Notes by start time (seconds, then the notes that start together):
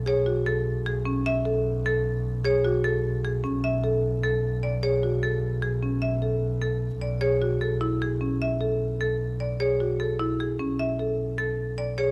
Already playing: B1
0.06 G#4 C#5
0.26 F#4
0.46 A4
0.86 G#4
1.05 C#4
1.26 E5
1.45 A4
1.86 A4
2.45 G#4 C#5
2.65 F#4
2.84 A4
3.25 G#4
3.44 C#4
3.64 E5
3.84 A4
4.23 A4
4.63 D5
4.83 G#4 C#5
5.03 F#4
5.23 A4
5.62 G#4
5.83 C#4
6.02 E5
6.22 A4
6.62 A4
7.01 D5
7.21 G#4 C#5
7.42 F#4
7.61 A4
7.81 E4
8.02 G#4
8.21 C#4
8.42 E5
8.61 A4
9.01 A4
9.40 D5
9.60 G#4 C#5
9.80 F#4
10.00 A4
10.19 E4
10.40 G#4
10.59 C#4
10.79 E5
10.99 A4
11.38 A4
11.78 D5
11.98 G#4 C#5